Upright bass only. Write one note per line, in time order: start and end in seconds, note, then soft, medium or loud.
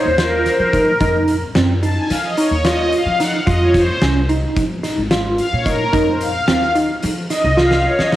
0.05 0.46 D#2 medium
0.59 0.90 F3 medium
1.01 1.42 F2 loud
1.56 1.97 F#2 medium
2.10 2.31 F3 loud
2.51 2.92 D#2 medium
3.06 3.37 F3 medium
3.47 3.88 F2 loud
4.02 4.43 C2 medium
4.57 4.77 F3 loud
4.98 5.39 G#1 medium
5.53 5.84 A#2 medium
5.93 6.35 F2 loud
6.48 6.90 D#2 medium
7.03 7.24 F3 loud
7.44 7.86 C2 medium
7.99 8.16 D#3 medium